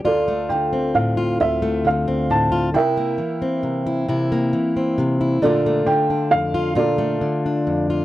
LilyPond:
<<
  \new Staff \with { instrumentName = "Upright piano" } { \time 6/8 \key d \minor \tempo 4. = 45 << { d''8 g''8 f''8 e''8 f''8 a''8 | g''2~ g''8 r8 | d''8 g''8 f''8 d''4. | } \\ { <f' a'>4. r4. | <bes' e''>2~ <bes' e''>8 r8 | <f' a'>4. <f' a'>4. | } >> }
  \new Staff \with { instrumentName = "Steel-string acoustic guitar" } { \time 6/8 \key d \minor << { f'16 a8 c'8 f'16 f'16 a8 c'8 f'16 | e'16 bes8 c'8 e'16 e'16 bes8 c'8 e'16 | <d a d' f'>16 a8 d'8 f'16 f'16 a8 d'8 f'16 | } \\ { d,8 d8 a,8 d,8 d8 a,8 | c8 e8 c8 c8 e8 c8 | bes,8 d8 f,8 bes,8 d8 f,8 | } >> }
>>